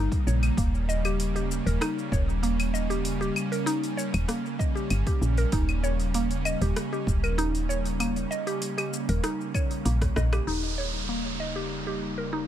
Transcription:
Already playing: analog synth pad C#3 G3 A#3 D#4, synth pluck D#4
0.12 kick, open hi-hat, shaker
0.27 fm bass A#1, synth pluck C#5, shaker
0.43 open hi-hat, claves, shaker
0.57 fm bass D#1, synth pluck A#3, analog synth pad C#4, kick, open hi-hat, shaker
0.75 shaker
0.89 synth pluck D#5, shaker
1.05 synth pluck G4, open hi-hat, claves, shaker
1.20 open hi-hat, shaker
1.36 synth pluck G4, open hi-hat, shaker
1.51 shaker
1.66 fm bass D#1, synth pluck A#4, open hi-hat, shaker
1.81 synth pluck D#4, cross-stick, open hi-hat, claves, shaker
1.99 shaker
2.12 fm bass D#1, synth pluck C#5, kick, shaker
2.29 shaker
2.43 synth pluck A#3, open hi-hat, shaker
2.60 open hi-hat, claves, shaker
2.74 synth pluck D#5, shaker
2.90 synth pluck G4, open hi-hat, shaker
3.05 open hi-hat, shaker
3.21 synth pluck G4, shaker
3.36 claves, shaker
3.52 synth pluck A#4, open hi-hat, shaker
3.66 synth pluck D#4, open hi-hat, shaker
3.83 open hi-hat, shaker
3.97 synth pluck C#5, shaker
4.14 fm bass D#1, open hi-hat, claves, shaker
4.28 synth pluck A#3, cross-stick, open hi-hat, shaker
4.46 shaker
4.59 synth pluck D#5, kick, shaker
4.75 synth pluck G4, shaker
4.90 fm bass G1, open hi-hat, claves, shaker
5.07 synth pluck G4, kick, open hi-hat, shaker
5.21 fm bass A#1, shaker
5.37 synth pluck A#4, open hi-hat, shaker
5.52 fm bass D#1, synth pluck D#4, kick, open hi-hat, shaker
5.69 claves, shaker
5.84 synth pluck C#5, shaker
6.00 open hi-hat, shaker
6.14 synth pluck A#3, open hi-hat, shaker
6.31 open hi-hat, shaker
6.45 synth pluck D#5, claves, shaker
6.61 fm bass D#1, synth pluck G4, open hi-hat, shaker
6.76 cross-stick, open hi-hat, shaker
6.93 synth pluck G4, shaker
7.07 fm bass D#1, kick, shaker
7.23 synth pluck A#4, claves, shaker
7.38 synth pluck D#4, open hi-hat, shaker
7.55 open hi-hat, shaker
7.69 synth pluck C#5, shaker
7.85 open hi-hat, shaker
8.00 synth pluck A#3, open hi-hat, claves, shaker
8.16 open hi-hat, shaker
8.31 synth pluck D#5, shaker
8.47 synth pluck G4, open hi-hat, shaker
8.62 open hi-hat, shaker
8.78 synth pluck G4, open hi-hat, claves, shaker
8.93 shaker
9.09 fm bass D#1, synth pluck A#4, open hi-hat, shaker
9.23 synth pluck D#4, cross-stick, open hi-hat, shaker
9.41 shaker
9.54 synth pluck C#5, kick, claves, shaker
9.71 open hi-hat, shaker
9.85 fm bass A#1, synth pluck A#3, open hi-hat, shaker
10.01 kick, cross-stick, open hi-hat, shaker
10.16 fm bass A#1, synth pluck D#5, kick, cross-stick, shaker
10.32 synth pluck G4, cross-stick, open hi-hat, claves, shaker
10.47 fm bass D#1, analog synth pad C#3 G3 A#3 D#4, synth pluck D#4, downlifter, shaker
10.64 shaker
10.78 synth pluck C#5, shaker
10.95 shaker
11.09 synth pluck A#3
11.26 shaker
11.40 synth pluck D#5
11.56 synth pluck G4, shaker
11.87 synth pluck G4
12.18 synth pluck A#4
12.33 synth pluck D#4

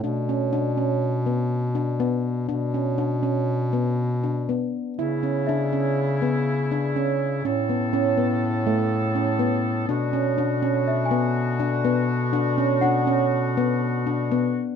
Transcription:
0.04 bass clarinet B2, handpan D4
0.29 handpan C#4
0.53 handpan D4
0.77 handpan C#4
1.26 handpan B3
1.75 handpan D4
2.00 handpan B3
2.49 bass clarinet B2, handpan D4
2.74 handpan C#4
2.98 handpan D4
3.23 handpan C#4
3.73 handpan B3
4.24 handpan D4
4.49 handpan B3
4.97 woodwind section C#3 B3 E4, bass clarinet C#3, handpan E4
5.23 handpan C#4
5.47 handpan D4, celesta E5
5.73 handpan C#4
6.22 handpan B3
6.72 handpan D4
6.96 handpan C#4
7.45 bass clarinet A2, handpan C#4, woodwind section A4
7.69 handpan B3
7.93 handpan C#4
8.17 handpan B3
8.67 handpan A3
9.15 handpan C#4
9.39 handpan B3
9.88 bass clarinet B2, woodwind section D3 F#4, handpan D4
10.13 handpan C#4
10.38 handpan D4
10.62 handpan C#4
10.88 celesta E5
11.05 celesta G#5
11.11 handpan B3
11.60 handpan D4
11.85 handpan B3
12.33 handpan D4
12.58 handpan C#4
12.81 handpan D4, celesta F#5
13.07 handpan C#4
13.57 handpan B3
14.07 handpan D4
14.31 handpan B3

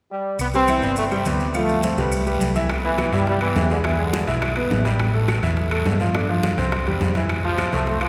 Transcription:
0.12 trombone section G3
0.39 fingered electric bass C2, trombone section B3, high conga, long guiro, claves, maracas
0.54 grand piano G3 G4 B4, trombone section C4, high conga, maracas
0.68 grand piano E3 E4 E5, high conga, short guiro, claves, maracas
0.82 fingered electric bass G1, grand piano B3 B4 D5, high conga, short guiro, maracas
0.96 trombone section A3, high conga, long guiro, maracas
1.11 grand piano G3 G4 G5, trombone section G3, high conga, claves, maracas
1.25 fingered electric bass D2, trombone section G3, grand piano B3 B4 D5, high conga, short guiro, maracas
1.40 high conga, short guiro, maracas
1.54 grand piano F3 F4 F5, trombone section A3, high conga, long guiro, claves, maracas
1.69 high conga, maracas
1.83 grand piano A3 A4 C5, high conga, short guiro, maracas
1.97 fingered electric bass C2, grand piano G3 G4 B4, short guiro, maracas
2.12 high conga, long guiro, claves, maracas
2.26 grand piano G3 G4 B4, high conga, maracas
2.40 fingered electric bass C2, high conga, short guiro, maracas
2.55 grand piano E3 E4 E5, high conga, short guiro, maracas
2.69 high bongo, high conga, high timbale, long guiro, claves
2.85 trombone section E3, grand piano B3 B4, high conga
2.98 high bongo, high conga, high timbale, low timbale, short guiro, claves
3.12 fingered electric bass G2, trombone section G3, grand piano E4 E5, high bongo, high conga, high timbale, short guiro
3.27 trombone section G3, high bongo, high conga, long guiro
3.41 trombone section E3, grand piano B3 B4, high bongo, high conga, high timbale, claves
3.55 fingered electric bass E2, high bongo, low bongo, high conga, low timbale, short guiro
3.70 trombone section D3, grand piano G#3 G#4, high bongo, high conga, short guiro
3.84 grand piano E3 E4, trombone section E3, high bongo, high conga, high timbale, long guiro, claves
3.99 trombone section D3, grand piano G#3 G#4, high conga
4.13 high bongo, high conga, high timbale, low timbale, short guiro
4.27 fingered electric bass B1, grand piano E4 E5, high bongo, high timbale, short guiro
4.42 high bongo, high conga, high timbale, long guiro, claves
4.56 grand piano B3 B4, high bongo, high conga, high timbale
4.70 fingered electric bass A1, high bongo, low bongo, high conga, low timbale, short guiro
4.85 grand piano G3 G4, high bongo, high conga, high timbale, short guiro
4.99 high bongo, high conga, high timbale, long guiro, claves
5.14 grand piano A3 A4, high conga
5.28 high bongo, high conga, high timbale, low timbale, short guiro, claves
5.43 fingered electric bass E2, grand piano E4 E5, high bongo, high conga, high timbale, short guiro
5.57 high bongo, high conga, long guiro
5.71 grand piano A3 A4, high bongo, high conga, high timbale, claves
5.85 fingered electric bass G2, high bongo, low bongo, high conga, low timbale, short guiro
6.00 grand piano F3 F4, high bongo, high conga, short guiro
6.14 grand piano D3 D4, high bongo, high conga, high timbale, long guiro, claves
6.29 grand piano F3 F4, high conga
6.43 high bongo, high conga, high timbale, low timbale, short guiro
6.58 fingered electric bass C2, grand piano C4 C5, high bongo, high timbale, short guiro
6.72 high bongo, high conga, high timbale, long guiro, claves
6.87 fingered electric bass E2, grand piano G3 G4, high bongo, high conga, high timbale
7.01 fingered electric bass F2, high bongo, low bongo, high conga, low timbale, short guiro
7.15 grand piano E3 E4, high bongo, high conga, high timbale, short guiro
7.29 high bongo, high conga, high timbale, long guiro, claves
7.44 grand piano F3 F4, trombone section F3, high conga
7.58 high bongo, high conga, high timbale, low timbale, short guiro, claves
7.72 fingered electric bass C2, trombone section A3, grand piano C4 C5, high bongo, high conga, high timbale, short guiro
7.87 trombone section A3, high bongo, high conga, long guiro
8.01 grand piano F3 F4, trombone section F3, high bongo, high conga, high timbale, claves

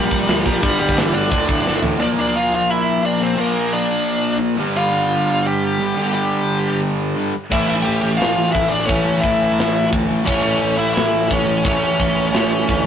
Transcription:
Already playing: distorted electric guitar A#2 F3 A#3, lead electric guitar G3 G4
0.09 picked electric bass A#1, overdriven electric guitar A#2 F3 A#3, kick
0.27 picked electric bass D2, overdriven electric guitar A#2 F3 A#3, snare, open hi-hat
0.46 picked electric bass F1, overdriven electric guitar A#2 F3 A#3, lead electric guitar G3 G4, kick
0.62 picked electric bass G1, overdriven electric guitar G2 D3 G3, kick, open hi-hat
0.79 picked electric bass G1, overdriven electric guitar G2 D3 G3, lead electric guitar G3 G4
0.89 kick
0.96 picked electric bass G1, overdriven electric guitar G2 D3 G3, lead electric guitar E3 E4, snare, open hi-hat
1.13 picked electric bass G1, overdriven electric guitar G2 D3 G3, lead electric guitar D4 D5
1.31 picked electric bass D1, overdriven electric guitar D2 A2 D3, kick, open hi-hat
1.48 picked electric bass D1, overdriven electric guitar D2 A2 D3, kick
1.64 picked electric bass G1, overdriven electric guitar D2 A2 D3, snare
1.82 picked electric bass A1, overdriven electric guitar D2 A2 D3, floor tom
1.98 overdriven electric guitar A#2 F3 A#3, lead electric guitar D4
2.02 lead electric guitar D5
2.19 lead electric guitar D4 D5
2.35 lead electric guitar F4 F5
2.54 lead electric guitar F4 F5
2.70 lead electric guitar E4 E5
3.05 lead electric guitar D4 D5
3.20 overdriven electric guitar A#2 F3 A#3, lead electric guitar C4 C5
3.36 overdriven electric guitar A#2 F3 A#3
3.40 lead electric guitar A#3 A#4
3.73 lead electric guitar D4 D5
4.57 overdriven electric guitar G2 D3 G3
4.77 lead electric guitar F4 F5
5.46 lead electric guitar G4 G5
5.79 overdriven electric guitar G2 D3 G3
5.94 overdriven electric guitar G2 D3 G3
6.14 lead electric guitar G4 G5
7.15 overdriven electric guitar G2 D3 G3
7.50 picked electric bass A1, overdriven electric guitar A2 E3 A3, lead electric guitar E4 E5, kick, crash
7.69 picked electric bass A1, lead electric guitar E4 E5, open hi-hat
7.83 picked electric bass A1, lead electric guitar G4 G5, open hi-hat
8.01 picked electric bass A1, lead electric guitar G4 G5, open hi-hat
8.17 picked electric bass A1, lead electric guitar F4 F5, open hi-hat
8.22 snare
8.37 picked electric bass A1, open hi-hat
8.52 picked electric bass A1, lead electric guitar E4 E5, kick, open hi-hat
8.68 overdriven electric guitar A2 E3 A3, lead electric guitar D4 D5
8.73 picked electric bass A1, open hi-hat
8.86 picked electric bass A1, overdriven electric guitar A2 E3, lead electric guitar C#4 C#5, kick, open hi-hat
8.90 overdriven electric guitar A3
9.07 open hi-hat
9.21 picked electric bass A1, lead electric guitar E4 E5, kick, open hi-hat
9.41 picked electric bass A1, open hi-hat
9.59 picked electric bass A1, snare, open hi-hat
9.76 open hi-hat
9.93 picked electric bass D2, kick, open hi-hat
10.08 picked electric bass A1, overdriven electric guitar A2 E3 A3, open hi-hat
10.25 picked electric bass A1, overdriven electric guitar A2 E3 A3, lead electric guitar C#4 C#5, kick, crash
10.42 picked electric bass A1, lead electric guitar C#4 C#5, open hi-hat
10.61 picked electric bass A1, open hi-hat
10.77 picked electric bass A1, lead electric guitar E4 E5, open hi-hat
10.93 picked electric bass A1, lead electric guitar E4 E5, open hi-hat
10.97 snare
11.13 picked electric bass A1, open hi-hat
11.30 picked electric bass A1, lead electric guitar C#4 C#5, kick, open hi-hat
11.47 picked electric bass A1, overdriven electric guitar A2 E3 A3, open hi-hat
11.63 picked electric bass A1, overdriven electric guitar A2 E3 A3, lead electric guitar C#4, kick, open hi-hat
11.67 lead electric guitar C#5
11.82 open hi-hat
12.00 picked electric bass A1, kick, open hi-hat
12.14 picked electric bass A1, open hi-hat
12.31 picked electric bass A1, snare, open hi-hat
12.52 open hi-hat
12.69 picked electric bass D2, kick, open hi-hat

